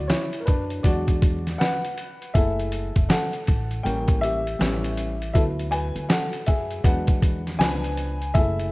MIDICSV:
0, 0, Header, 1, 4, 480
1, 0, Start_track
1, 0, Key_signature, 3, "minor"
1, 0, Tempo, 750000
1, 1503, Time_signature, 4, 2, 24, 8
1, 5580, End_track
2, 0, Start_track
2, 0, Title_t, "Upright piano"
2, 0, Program_c, 0, 0
2, 0, Note_on_c, 0, 54, 53
2, 0, Note_on_c, 0, 59, 46
2, 48, Note_on_c, 0, 73, 77
2, 62, Note_on_c, 0, 64, 65
2, 255, Note_off_c, 0, 64, 0
2, 256, Note_on_c, 0, 70, 61
2, 269, Note_off_c, 0, 73, 0
2, 291, Note_on_c, 0, 71, 73
2, 296, Note_off_c, 0, 70, 0
2, 304, Note_on_c, 0, 62, 61
2, 513, Note_off_c, 0, 54, 0
2, 515, Note_off_c, 0, 59, 0
2, 527, Note_off_c, 0, 62, 0
2, 533, Note_on_c, 0, 74, 85
2, 535, Note_on_c, 0, 54, 55
2, 539, Note_on_c, 0, 56, 47
2, 543, Note_on_c, 0, 62, 59
2, 545, Note_off_c, 0, 71, 0
2, 545, Note_on_c, 0, 66, 70
2, 882, Note_off_c, 0, 54, 0
2, 884, Note_off_c, 0, 56, 0
2, 887, Note_off_c, 0, 62, 0
2, 999, Note_off_c, 0, 66, 0
2, 1013, Note_on_c, 0, 78, 97
2, 1025, Note_on_c, 0, 71, 72
2, 1032, Note_off_c, 0, 74, 0
2, 1472, Note_off_c, 0, 78, 0
2, 1479, Note_off_c, 0, 71, 0
2, 1496, Note_on_c, 0, 76, 82
2, 1502, Note_on_c, 0, 68, 57
2, 1505, Note_on_c, 0, 57, 46
2, 1507, Note_on_c, 0, 64, 60
2, 1510, Note_on_c, 0, 69, 72
2, 1846, Note_off_c, 0, 68, 0
2, 1847, Note_off_c, 0, 57, 0
2, 1849, Note_off_c, 0, 64, 0
2, 1961, Note_off_c, 0, 69, 0
2, 1977, Note_on_c, 0, 78, 89
2, 1989, Note_on_c, 0, 69, 75
2, 1994, Note_off_c, 0, 76, 0
2, 2440, Note_off_c, 0, 69, 0
2, 2453, Note_on_c, 0, 79, 82
2, 2456, Note_on_c, 0, 55, 44
2, 2460, Note_on_c, 0, 58, 49
2, 2464, Note_on_c, 0, 61, 54
2, 2465, Note_on_c, 0, 70, 61
2, 2474, Note_off_c, 0, 78, 0
2, 2687, Note_off_c, 0, 70, 0
2, 2695, Note_on_c, 0, 76, 102
2, 2706, Note_off_c, 0, 79, 0
2, 2711, Note_on_c, 0, 67, 62
2, 2803, Note_off_c, 0, 55, 0
2, 2805, Note_off_c, 0, 58, 0
2, 2807, Note_off_c, 0, 61, 0
2, 2936, Note_on_c, 0, 55, 54
2, 2940, Note_on_c, 0, 59, 52
2, 2946, Note_on_c, 0, 61, 65
2, 3283, Note_off_c, 0, 55, 0
2, 3285, Note_off_c, 0, 59, 0
2, 3288, Note_off_c, 0, 61, 0
2, 3401, Note_off_c, 0, 67, 0
2, 3404, Note_off_c, 0, 76, 0
2, 3414, Note_on_c, 0, 76, 84
2, 3416, Note_on_c, 0, 54, 50
2, 3421, Note_on_c, 0, 59, 45
2, 3424, Note_on_c, 0, 64, 60
2, 3425, Note_on_c, 0, 69, 70
2, 3469, Note_off_c, 0, 76, 0
2, 3479, Note_off_c, 0, 69, 0
2, 3654, Note_on_c, 0, 80, 85
2, 3664, Note_on_c, 0, 71, 64
2, 3887, Note_off_c, 0, 71, 0
2, 3896, Note_on_c, 0, 78, 91
2, 3905, Note_on_c, 0, 69, 64
2, 3906, Note_off_c, 0, 80, 0
2, 4127, Note_off_c, 0, 69, 0
2, 4138, Note_on_c, 0, 76, 75
2, 4147, Note_off_c, 0, 78, 0
2, 4149, Note_on_c, 0, 68, 66
2, 4354, Note_off_c, 0, 54, 0
2, 4356, Note_off_c, 0, 59, 0
2, 4358, Note_off_c, 0, 64, 0
2, 4370, Note_off_c, 0, 68, 0
2, 4377, Note_on_c, 0, 78, 78
2, 4378, Note_on_c, 0, 54, 50
2, 4384, Note_on_c, 0, 56, 48
2, 4386, Note_on_c, 0, 71, 53
2, 4388, Note_off_c, 0, 76, 0
2, 4388, Note_on_c, 0, 62, 52
2, 4724, Note_off_c, 0, 54, 0
2, 4727, Note_off_c, 0, 56, 0
2, 4729, Note_off_c, 0, 62, 0
2, 4834, Note_off_c, 0, 78, 0
2, 4839, Note_off_c, 0, 71, 0
2, 4856, Note_on_c, 0, 80, 105
2, 4859, Note_on_c, 0, 53, 53
2, 4864, Note_on_c, 0, 59, 51
2, 4869, Note_on_c, 0, 62, 60
2, 4870, Note_on_c, 0, 71, 75
2, 5204, Note_off_c, 0, 53, 0
2, 5207, Note_off_c, 0, 59, 0
2, 5210, Note_off_c, 0, 62, 0
2, 5321, Note_off_c, 0, 71, 0
2, 5337, Note_on_c, 0, 76, 96
2, 5342, Note_on_c, 0, 68, 51
2, 5346, Note_on_c, 0, 57, 45
2, 5351, Note_on_c, 0, 64, 61
2, 5351, Note_on_c, 0, 69, 65
2, 5354, Note_off_c, 0, 80, 0
2, 5580, Note_off_c, 0, 57, 0
2, 5580, Note_off_c, 0, 64, 0
2, 5580, Note_off_c, 0, 68, 0
2, 5580, Note_off_c, 0, 69, 0
2, 5580, Note_off_c, 0, 76, 0
2, 5580, End_track
3, 0, Start_track
3, 0, Title_t, "Upright bass"
3, 0, Program_c, 1, 32
3, 307, Note_on_c, 1, 42, 82
3, 523, Note_off_c, 1, 42, 0
3, 539, Note_on_c, 1, 40, 97
3, 995, Note_off_c, 1, 40, 0
3, 1503, Note_on_c, 1, 30, 87
3, 1869, Note_off_c, 1, 30, 0
3, 1894, Note_on_c, 1, 30, 84
3, 1975, Note_off_c, 1, 30, 0
3, 2229, Note_on_c, 1, 33, 90
3, 2444, Note_off_c, 1, 33, 0
3, 2465, Note_on_c, 1, 33, 102
3, 2918, Note_off_c, 1, 33, 0
3, 2940, Note_on_c, 1, 33, 96
3, 3396, Note_off_c, 1, 33, 0
3, 3422, Note_on_c, 1, 38, 93
3, 3789, Note_off_c, 1, 38, 0
3, 3812, Note_on_c, 1, 38, 79
3, 3893, Note_off_c, 1, 38, 0
3, 4147, Note_on_c, 1, 42, 90
3, 4363, Note_off_c, 1, 42, 0
3, 4378, Note_on_c, 1, 40, 104
3, 4835, Note_off_c, 1, 40, 0
3, 4859, Note_on_c, 1, 37, 83
3, 5316, Note_off_c, 1, 37, 0
3, 5345, Note_on_c, 1, 30, 93
3, 5580, Note_off_c, 1, 30, 0
3, 5580, End_track
4, 0, Start_track
4, 0, Title_t, "Drums"
4, 61, Note_on_c, 9, 42, 88
4, 63, Note_on_c, 9, 38, 121
4, 125, Note_off_c, 9, 42, 0
4, 127, Note_off_c, 9, 38, 0
4, 211, Note_on_c, 9, 42, 48
4, 275, Note_off_c, 9, 42, 0
4, 300, Note_on_c, 9, 42, 64
4, 307, Note_on_c, 9, 36, 81
4, 364, Note_off_c, 9, 42, 0
4, 371, Note_off_c, 9, 36, 0
4, 450, Note_on_c, 9, 42, 45
4, 514, Note_off_c, 9, 42, 0
4, 540, Note_on_c, 9, 36, 84
4, 546, Note_on_c, 9, 42, 85
4, 604, Note_off_c, 9, 36, 0
4, 610, Note_off_c, 9, 42, 0
4, 690, Note_on_c, 9, 42, 57
4, 691, Note_on_c, 9, 36, 73
4, 754, Note_off_c, 9, 42, 0
4, 755, Note_off_c, 9, 36, 0
4, 783, Note_on_c, 9, 36, 84
4, 789, Note_on_c, 9, 42, 61
4, 847, Note_off_c, 9, 36, 0
4, 853, Note_off_c, 9, 42, 0
4, 940, Note_on_c, 9, 38, 30
4, 940, Note_on_c, 9, 42, 46
4, 1004, Note_off_c, 9, 38, 0
4, 1004, Note_off_c, 9, 42, 0
4, 1030, Note_on_c, 9, 42, 95
4, 1031, Note_on_c, 9, 38, 117
4, 1094, Note_off_c, 9, 42, 0
4, 1095, Note_off_c, 9, 38, 0
4, 1181, Note_on_c, 9, 42, 56
4, 1245, Note_off_c, 9, 42, 0
4, 1264, Note_on_c, 9, 42, 70
4, 1328, Note_off_c, 9, 42, 0
4, 1420, Note_on_c, 9, 42, 46
4, 1484, Note_off_c, 9, 42, 0
4, 1504, Note_on_c, 9, 36, 102
4, 1504, Note_on_c, 9, 42, 73
4, 1568, Note_off_c, 9, 36, 0
4, 1568, Note_off_c, 9, 42, 0
4, 1661, Note_on_c, 9, 42, 47
4, 1725, Note_off_c, 9, 42, 0
4, 1741, Note_on_c, 9, 42, 81
4, 1805, Note_off_c, 9, 42, 0
4, 1893, Note_on_c, 9, 42, 48
4, 1895, Note_on_c, 9, 36, 76
4, 1957, Note_off_c, 9, 42, 0
4, 1959, Note_off_c, 9, 36, 0
4, 1982, Note_on_c, 9, 42, 87
4, 1984, Note_on_c, 9, 38, 124
4, 2046, Note_off_c, 9, 42, 0
4, 2048, Note_off_c, 9, 38, 0
4, 2132, Note_on_c, 9, 42, 49
4, 2196, Note_off_c, 9, 42, 0
4, 2223, Note_on_c, 9, 42, 62
4, 2229, Note_on_c, 9, 36, 80
4, 2287, Note_off_c, 9, 42, 0
4, 2293, Note_off_c, 9, 36, 0
4, 2373, Note_on_c, 9, 42, 43
4, 2437, Note_off_c, 9, 42, 0
4, 2470, Note_on_c, 9, 42, 82
4, 2534, Note_off_c, 9, 42, 0
4, 2609, Note_on_c, 9, 42, 59
4, 2612, Note_on_c, 9, 36, 85
4, 2673, Note_off_c, 9, 42, 0
4, 2676, Note_off_c, 9, 36, 0
4, 2709, Note_on_c, 9, 42, 70
4, 2773, Note_off_c, 9, 42, 0
4, 2862, Note_on_c, 9, 42, 48
4, 2926, Note_off_c, 9, 42, 0
4, 2949, Note_on_c, 9, 42, 88
4, 2950, Note_on_c, 9, 38, 116
4, 3013, Note_off_c, 9, 42, 0
4, 3014, Note_off_c, 9, 38, 0
4, 3100, Note_on_c, 9, 42, 58
4, 3164, Note_off_c, 9, 42, 0
4, 3183, Note_on_c, 9, 42, 74
4, 3247, Note_off_c, 9, 42, 0
4, 3340, Note_on_c, 9, 42, 46
4, 3404, Note_off_c, 9, 42, 0
4, 3424, Note_on_c, 9, 36, 103
4, 3426, Note_on_c, 9, 42, 72
4, 3488, Note_off_c, 9, 36, 0
4, 3490, Note_off_c, 9, 42, 0
4, 3580, Note_on_c, 9, 42, 47
4, 3644, Note_off_c, 9, 42, 0
4, 3660, Note_on_c, 9, 42, 77
4, 3724, Note_off_c, 9, 42, 0
4, 3813, Note_on_c, 9, 42, 50
4, 3877, Note_off_c, 9, 42, 0
4, 3902, Note_on_c, 9, 42, 88
4, 3903, Note_on_c, 9, 38, 110
4, 3966, Note_off_c, 9, 42, 0
4, 3967, Note_off_c, 9, 38, 0
4, 4051, Note_on_c, 9, 42, 50
4, 4115, Note_off_c, 9, 42, 0
4, 4138, Note_on_c, 9, 42, 58
4, 4147, Note_on_c, 9, 36, 74
4, 4202, Note_off_c, 9, 42, 0
4, 4211, Note_off_c, 9, 36, 0
4, 4292, Note_on_c, 9, 42, 46
4, 4356, Note_off_c, 9, 42, 0
4, 4380, Note_on_c, 9, 36, 99
4, 4386, Note_on_c, 9, 42, 82
4, 4444, Note_off_c, 9, 36, 0
4, 4450, Note_off_c, 9, 42, 0
4, 4527, Note_on_c, 9, 42, 60
4, 4531, Note_on_c, 9, 36, 82
4, 4591, Note_off_c, 9, 42, 0
4, 4595, Note_off_c, 9, 36, 0
4, 4623, Note_on_c, 9, 36, 97
4, 4629, Note_on_c, 9, 42, 70
4, 4687, Note_off_c, 9, 36, 0
4, 4693, Note_off_c, 9, 42, 0
4, 4781, Note_on_c, 9, 38, 29
4, 4781, Note_on_c, 9, 42, 46
4, 4845, Note_off_c, 9, 38, 0
4, 4845, Note_off_c, 9, 42, 0
4, 4869, Note_on_c, 9, 42, 99
4, 4870, Note_on_c, 9, 38, 113
4, 4933, Note_off_c, 9, 42, 0
4, 4934, Note_off_c, 9, 38, 0
4, 5019, Note_on_c, 9, 42, 57
4, 5083, Note_off_c, 9, 42, 0
4, 5103, Note_on_c, 9, 42, 69
4, 5167, Note_off_c, 9, 42, 0
4, 5259, Note_on_c, 9, 42, 46
4, 5323, Note_off_c, 9, 42, 0
4, 5343, Note_on_c, 9, 42, 71
4, 5344, Note_on_c, 9, 36, 105
4, 5407, Note_off_c, 9, 42, 0
4, 5408, Note_off_c, 9, 36, 0
4, 5501, Note_on_c, 9, 42, 45
4, 5565, Note_off_c, 9, 42, 0
4, 5580, End_track
0, 0, End_of_file